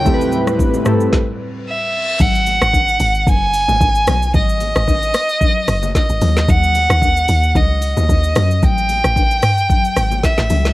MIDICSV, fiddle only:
0, 0, Header, 1, 2, 480
1, 0, Start_track
1, 0, Tempo, 535714
1, 50, Time_signature, 4, 2, 24, 8
1, 9614, End_track
2, 0, Start_track
2, 0, Title_t, "Fiddle"
2, 0, Program_c, 0, 110
2, 0, Note_on_c, 0, 79, 100
2, 299, Note_off_c, 0, 79, 0
2, 1503, Note_on_c, 0, 76, 100
2, 1983, Note_on_c, 0, 78, 121
2, 1996, Note_off_c, 0, 76, 0
2, 2943, Note_on_c, 0, 80, 125
2, 2956, Note_off_c, 0, 78, 0
2, 3897, Note_off_c, 0, 80, 0
2, 3901, Note_on_c, 0, 75, 113
2, 5300, Note_off_c, 0, 75, 0
2, 5342, Note_on_c, 0, 75, 96
2, 5824, Note_on_c, 0, 78, 118
2, 5837, Note_off_c, 0, 75, 0
2, 6782, Note_on_c, 0, 75, 102
2, 6796, Note_off_c, 0, 78, 0
2, 7741, Note_on_c, 0, 79, 119
2, 7755, Note_off_c, 0, 75, 0
2, 9182, Note_on_c, 0, 76, 96
2, 9195, Note_off_c, 0, 79, 0
2, 9614, Note_off_c, 0, 76, 0
2, 9614, End_track
0, 0, End_of_file